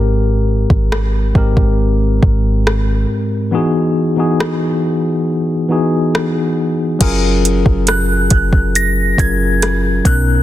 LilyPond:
<<
  \new Staff \with { instrumentName = "Synth bell" } { \time 4/4 \key fis \major \tempo 4 = 69 r1 | r1 | r4 fis'''4 ais'''8 gis'''4 fis'''8 | }
  \new Staff \with { instrumentName = "Tine electric piano" } { \time 4/4 \key fis \major <gis, gis bis g' ais'>4 r8 <gis, gis bis g' ais'>4. r4 | <e b dis' fis' gis'>8 r16 <e b dis' fis' gis'>4~ <e b dis' fis' gis'>16 r8 <e b dis' fis' gis'>4~ <e b dis' fis' gis'>16 r16 | <fis cis' eis' gis' ais'>4. r4 <fis cis' eis' gis' ais'>4 <b, b cis' dis' ais'>8 | }
  \new Staff \with { instrumentName = "808-style bass" } { \clef bass \time 4/4 \key fis \major gis,,8. gis,,8. gis,,16 gis,,8. gis,,4 r8 | r1 | fis,,8. fis,,8. fis,,4 fis,,4 b,,8 | }
  \new DrumStaff \with { instrumentName = "Drums" } \drummode { \time 4/4 r8. bd16 ss8 bd16 bd16 r8 bd8 ss4 | r4 ss4 r4 ss4 | <cymc hh bd>8 hh16 bd16 <hh ss>8 <hh bd>16 bd16 hh8 <hh bd>8 <hh ss>8 <hh bd>8 | }
>>